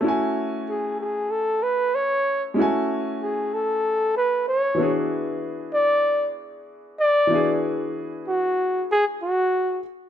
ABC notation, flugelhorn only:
X:1
M:4/4
L:1/16
Q:"Swing 16ths" 1/4=95
K:F#m
V:1 name="Flugelhorn"
z4 G2 G2 A2 B2 c3 z | z4 G2 A4 B2 c3 z | z4 d4 z4 d4 | z4 F4 G2 F4 z2 |]